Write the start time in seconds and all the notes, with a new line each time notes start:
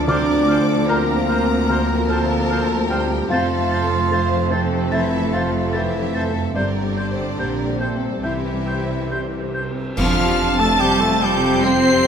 Already playing: D2 A2 F3 D4 F4 A4 D6 E6 F6
0.06 D2 D3 C4 D4 A#4 C5 D5 D6 F6
0.34 F3
0.48 A4 C5 F6
0.61 C5
0.87 A#3 F4 G4 A#4 C5 A#5 F6
1.15 C5
1.29 F4 C5 F6
1.43 C4
1.69 D2 A#4 C5 F6
1.96 F3
2.09 A#3 A4 C5 A5 F6
2.24 C5
2.50 F4 C5 F6
2.77 C5
2.88 G3 G4 C5 G5 F6
3.04 C4
3.30 F1 F2 F3 A3 C4 F4 A4 C5 F5 A6
3.58 A3
3.71 C5 A6
3.84 C5
4.11 A4 C5 A6
4.38 C5
4.49 C3 C4 A4 C5 A6
4.64 C4
4.91 C3 E3 E4 C5 E5 A6
5.20 A3
5.32 F3 F4 C5 F5 A6
5.47 C5
5.72 E3 E4 G4 A4 C5 E5 A6
6.01 C5
6.14 A4 C5 A6
6.28 C4
6.53 G1 G2 D3 G3 C4 D4 A#4 C5 D5 G6
6.83 G3
6.96 C5 G6
7.11 C5
7.37 A#1 A#2 G4 A#4 C5 G6
7.67 C5
7.80 C3 C4 A4 C5 G6
7.96 C4
8.21 C2 C3 E3 G3 C4 E4 G4 C5 E5 G6
8.53 G3
8.67 C5 G6
8.83 C5
9.11 G4 C5 G6
9.42 C5
9.54 C5 G6
9.71 C4
9.96 F2 F3 D4 F4 F5 A5 F6, concert bass drum, crash
10.26 G4
10.53 C4
10.58 A3 A4 A5 A6
10.78 C3 G3 C4 G4 G5 G6
10.99 A3 A4 A5 A6
11.08 G3
11.20 G3 G4 G5 G6
11.37 C3
11.63 G3 C4 C5 G5 C6 C7
11.92 G4